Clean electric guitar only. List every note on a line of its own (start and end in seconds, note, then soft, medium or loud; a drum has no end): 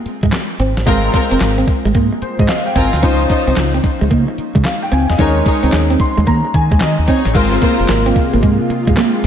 0.23 0.30 G#3 medium
0.60 0.73 C4 medium
0.87 1.00 G#3 medium
1.14 muted clean electric guitar stroke soft
1.32 1.38 C4 medium
1.58 1.65 C4 medium
1.68 muted clean electric guitar stroke soft
1.85 1.92 G#3 medium
1.95 2.08 A#3 medium
2.13 muted clean electric guitar stroke soft
2.40 2.46 G#3 medium
2.76 2.89 C4 medium
3.03 3.16 C#4 medium
3.30 muted clean electric guitar stroke soft
3.48 3.55 C4 medium
3.74 3.81 C4 medium
3.84 muted clean electric guitar stroke soft
4.01 4.08 G#3 medium
4.11 4.24 A#3 medium
4.28 muted clean electric guitar stroke soft
4.55 4.62 G#3 medium
4.92 5.05 C4 medium
5.19 5.32 D#4 medium
5.46 muted clean electric guitar stroke soft
5.63 5.70 C4 medium
5.90 5.97 C4 medium
6.00 muted clean electric guitar stroke soft
6.18 6.25 G#3 medium
6.27 6.40 A#3 medium
6.45 muted clean electric guitar stroke soft
6.72 6.79 G#3 medium
7.08 7.21 C4 medium
7.35 7.48 G#3 medium
7.53 muted clean electric guitar stroke soft
7.62 7.75 A#3 medium
8.06 8.13 C4 medium
8.16 muted clean electric guitar stroke soft
8.34 8.41 A#3 medium
8.43 8.56 G#3 medium
8.70 muted clean electric guitar stroke soft
8.87 8.95 G#3 medium
8.97 9.10 A#3 medium